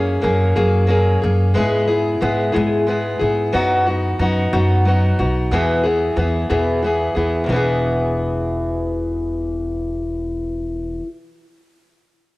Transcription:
Already playing: F#2 A#3 C#4 G#4
0.22 F#2 F#3 A#3 C#4 G#4
0.56 F#2 F#3 A#3 C#4 G#4
0.87 F#3 A#3 C#4 G#4
1.22 F#2 A#3 C#4 G#4
1.54 G#2 G#3 B3 E4 G#4
1.88 B3 E4 G#4
2.21 G#2 G#3 B3 E4 G#4
2.52 G#2 G#3 B3 E4 G#4
2.87 G#3 B3 E4 G#4
3.19 G#2 B3 E4 G#4
3.53 F#2 F#3 B3 D#4 F#4
3.87 B3 D#4 F#4
4.19 F#2 F#3 B3 D#4 F#4
4.53 F#2 F#3 B3 D#4 F#4
4.85 F#3 B3 D#4 F#4
5.19 B1 B3 D#4 F#4
5.51 E2 B2 E3 B3 E4 G#4
5.83 E3 B3 E4 G#4
6.16 E2 E3 B3 E4 G#4
6.50 E2 B2 E3 B3 E4 G#4
6.82 E3 B3 E4 G#4
7.15 E2 E3 B3 E4 G#4
7.44 E2 B2
7.49 E1 E3 B3
7.54 E4 G#4

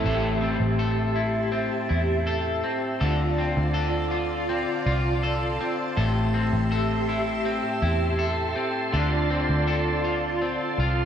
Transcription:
Already playing: E3 A3 C4 E4
0.04 A1 A2 G4 A4 E5 A5 C6
0.41 C4
0.60 A1
0.79 A4
1.16 E4
1.52 C4
1.89 E2 E4
2.27 A4
2.64 C4
3.00 D2 D3 F4 A4 D5 A5
3.38 C4
3.57 D2
3.74 A4
4.11 F4
4.49 C4
4.86 C2 F4
5.23 A4
5.60 C4
5.97 A1 A2 G4 A4 E5
6.34 C4
6.53 A1
6.72 A4
7.09 E4
7.45 C4
7.82 E2 E4
8.19 A4
8.56 C4
8.93 D2 D3 F4 A4 D5
9.30 C4
9.49 D2
9.67 A4
10.04 F4
10.42 C4
10.78 C2 F4

